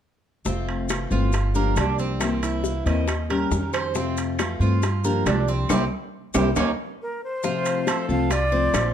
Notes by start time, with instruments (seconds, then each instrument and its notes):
0.45 upright bass F1, steel-string acoustic guitar C3 A3 C4 F4, cuban tres C4, high bongo, maracas
0.69 high timbale
0.88 steel-string acoustic guitar E3 A3 C4 F4, high bongo, high timbale, claves, maracas
1.10 upright bass G1, steel-string acoustic guitar E3 A3 C4 F4, cuban tres F4, maracas
1.32 muted steel-string acoustic guitar stroke, high bongo, high timbale, maracas
1.54 steel-string acoustic guitar F3 A#3 D4 G4, cuban tres A#3, maracas
1.76 upright bass C2, steel-string acoustic guitar F3 A#3 D4 G4, cuban tres D4, high bongo, low bongo, high timbale, claves, maracas
1.99 cuban tres C4, maracas
2.20 steel-string acoustic guitar C3 E3 A#3 C4 E4, high bongo, high timbale, claves, maracas
2.43 cuban tres E4, high bongo, high timbale, maracas
2.64 steel-string acoustic guitar E3 A#3 C4 E4, high bongo, maracas
2.86 upright bass D#2, steel-string acoustic guitar E3 A#3 C4 E4, cuban tres D#5, high bongo, high timbale, maracas
3.08 muted steel-string acoustic guitar stroke, high bongo, high timbale, claves, maracas
3.30 steel-string acoustic guitar G3 C#4 G4, cuban tres A#4, high timbale
3.51 upright bass F2, steel-string acoustic guitar D#3 G3 C#4 G4, high bongo, low bongo, maracas
3.73 cuban tres C5, high bongo, high timbale, claves, maracas
3.94 steel-string acoustic guitar C3 A3 C4 F4, cuban tres C4, high bongo, maracas
4.17 high timbale, maracas
4.39 steel-string acoustic guitar E3 A3 C4 F4, high bongo, high timbale, claves, maracas
4.60 upright bass G2, steel-string acoustic guitar E3 A3 C4 F4, cuban tres F4, maracas
4.82 muted steel-string acoustic guitar stroke, high bongo, high timbale, maracas
5.04 steel-string acoustic guitar F3 A#3 D4 G4, cuban tres A#3, maracas
5.26 upright bass C2, steel-string acoustic guitar F3 D4 G4, cuban tres D4, high bongo, low bongo, high timbale, low timbale, claves, maracas
5.48 cuban tres C4, maracas
5.69 upright bass C2, steel-string acoustic guitar G3 A#3 C4, cuban tres C4 E4 G4, low bongo, high timbale, claves, maracas
6.34 upright bass C2, steel-string acoustic guitar G3 A#3 C4, cuban tres C4 E4 G4, low bongo, high timbale, claves, maracas
6.56 upright bass D#2, steel-string acoustic guitar A#3 C#4 D#4, cuban tres C#4 D#4 G4, low bongo, high timbale, claves, maracas
7.02 flute A#4
7.24 flute C5
7.43 steel-string acoustic guitar C3 F3 A3 C4 F4, cuban tres F4, high bongo, maracas
7.65 high timbale, maracas
7.86 steel-string acoustic guitar F3 A3 C4 F4, cuban tres A4, high bongo, high timbale, claves, maracas
8.08 upright bass C2, steel-string acoustic guitar F3 A3 C4 F4, flute F5, maracas
8.30 cuban tres F4, flute D5, muted steel-string acoustic guitar stroke, high bongo, high timbale, maracas
8.52 steel-string acoustic guitar F3 A3 C4 F4, cuban tres C5
8.74 upright bass A#1, steel-string acoustic guitar F3 A3 C4 F4, high bongo, low bongo, high timbale, claves, maracas